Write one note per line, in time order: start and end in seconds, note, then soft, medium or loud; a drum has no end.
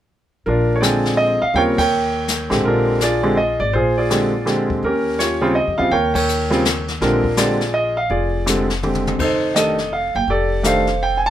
0.46 1.38 A#1 medium
0.46 1.03 D4 medium
0.46 0.81 F4 medium
0.46 0.75 A#4 medium
0.46 brush sweep soft
0.76 0.82 C#5 medium
0.81 1.37 D3 soft
0.81 1.37 G#3 medium
0.81 1.37 C4 medium
0.81 1.38 F4 medium
0.81 1.38 G#4 medium
0.81 1.15 D5 medium
0.81 1.37 G5 medium
0.81 snare medium
0.81 hi-hat pedal medium
1.06 snare soft
1.17 1.42 D#5 medium
1.42 1.55 F5 medium
1.42 muted upright bass stroke soft
1.54 2.46 D#2 medium
1.54 1.75 C#3 medium
1.54 1.76 G3 soft
1.54 1.76 C4 soft
1.54 1.76 F4 medium
1.54 1.79 A#4 medium
1.54 1.79 C#5 medium
1.54 1.61 G5 loud
1.54 brush sweep soft
1.78 2.48 A#4 medium
1.78 2.48 C#5 medium
1.78 2.47 G5 loud
1.78 kick medium
1.78 ride medium
2.28 snare medium
2.28 hi-hat pedal medium
2.50 2.63 A1 medium
2.50 2.98 D3 medium
2.50 2.98 G#3 medium
2.50 2.97 C4 medium
2.50 2.98 G4 medium
2.50 snare soft
2.63 3.56 A#1 medium
2.63 2.99 A#4 medium
2.63 brush sweep soft
2.67 3.21 D4 medium
2.67 3.02 F4 medium
3.01 3.58 F4 medium
3.01 3.57 G#4 medium
3.01 3.35 D5 medium
3.01 snare soft
3.01 hi-hat pedal soft
3.23 3.35 D3 medium
3.23 3.36 G#3 medium
3.23 3.35 C4 medium
3.23 3.36 G4 medium
3.37 3.59 D#5 medium
3.60 3.72 G#1 medium
3.60 3.72 D5 medium
3.73 4.78 A#1 medium
3.73 3.98 F4 medium
3.73 3.98 G#4 medium
3.73 3.97 C5 medium
3.73 brush sweep soft
3.97 4.67 F4 medium
3.97 4.67 G#4 medium
3.97 4.66 D5 medium
4.10 4.31 D3 medium
4.10 4.31 G#3 medium
4.10 4.31 C4 medium
4.10 4.31 G4 medium
4.10 snare medium
4.10 hi-hat pedal soft
4.45 4.82 D3 medium
4.45 4.83 G#3 medium
4.45 4.83 C4 medium
4.45 4.83 G4 medium
4.45 snare soft
4.70 kick medium
4.83 5.63 D#2 medium
4.83 5.40 C#4 medium
4.83 5.19 G4 medium
4.83 5.17 A#4 medium
4.83 brush sweep soft
5.19 5.41 F4 medium
5.19 5.75 G4 medium
5.19 5.53 C#5 medium
5.19 snare medium
5.19 hi-hat pedal soft
5.41 5.54 C#3 medium
5.41 5.54 G3 medium
5.41 5.54 C4 medium
5.41 5.54 F4 medium
5.55 5.79 D#5 medium
5.67 5.79 F2 medium
5.78 5.91 E2 medium
5.78 5.90 C#3 medium
5.78 5.90 G3 soft
5.78 5.90 C4 soft
5.78 5.91 F4 medium
5.78 5.92 F5 medium
5.91 6.97 D#2 medium
5.91 6.14 A#4 medium
5.91 6.14 C#5 medium
5.91 6.12 G5 medium
5.91 brush sweep soft
6.14 6.84 A#4 medium
6.14 6.84 C#5 medium
6.14 6.83 G5 medium
6.14 kick medium
6.14 ride medium
6.29 hi-hat pedal soft
6.50 6.63 C#3 medium
6.50 6.63 G3 medium
6.50 6.63 C4 medium
6.50 6.63 F4 medium
6.50 snare soft
6.65 snare medium
6.65 hi-hat pedal medium
6.88 snare soft
7.01 8.06 A#1 medium
7.01 7.22 D3 medium
7.01 7.22 G#3 soft
7.01 7.22 C4 soft
7.01 7.57 D4 medium
7.01 7.36 F4 medium
7.01 7.22 G4 medium
7.01 7.39 A#4 medium
7.01 brush sweep soft
7.01 snare soft
7.24 kick soft
7.37 7.58 D3 medium
7.37 7.58 G#3 soft
7.37 7.58 C4 soft
7.37 7.93 F4 medium
7.37 7.58 G4 medium
7.37 7.93 G#4 soft
7.37 7.71 D5 medium
7.37 snare medium
7.37 hi-hat pedal medium
7.61 snare soft
7.74 7.96 D#5 medium
7.97 8.10 F5 medium
8.10 9.15 F1 medium
8.10 8.66 F4 medium
8.10 8.66 G#4 medium
8.10 8.66 D5 medium
8.10 brush sweep soft
8.46 8.67 D3 medium
8.46 8.67 G#3 soft
8.46 8.67 C4 medium
8.46 8.67 G4 medium
8.46 snare medium
8.46 hi-hat pedal medium
8.70 snare soft
8.83 9.20 D3 soft
8.83 9.20 G#3 soft
8.83 9.20 C4 medium
8.83 9.20 G4 medium
8.83 mid tom soft
8.95 mid tom soft
9.07 mid tom medium
9.19 10.11 F1 medium
9.19 9.76 D#4 medium
9.19 9.56 A4 medium
9.19 9.57 C5 medium
9.19 brush sweep soft
9.19 kick medium
9.19 crash medium
9.55 9.76 D#3 soft
9.55 9.76 A3 soft
9.55 9.76 D4 soft
9.55 9.76 G4 medium
9.55 10.12 A4 medium
9.55 9.93 D#5 medium
9.55 snare medium
9.55 hi-hat pedal medium
9.78 snare soft
9.93 10.14 F5 medium
10.15 10.27 F#1 medium
10.15 10.29 G5 medium
10.28 11.30 F1 medium
10.28 10.62 G4 medium
10.28 10.65 A4 medium
10.28 10.63 D5 medium
10.28 brush sweep medium
10.63 10.85 D#3 medium
10.63 10.85 A3 soft
10.63 10.85 D4 medium
10.63 10.85 G4 medium
10.63 11.21 A4 medium
10.63 11.21 C5 medium
10.63 11.03 F5 medium
10.63 snare medium
10.63 hi-hat pedal medium
10.87 snare soft
11.03 11.20 G5 medium
11.17 11.24 G#5 medium
11.26 11.29 A5 loud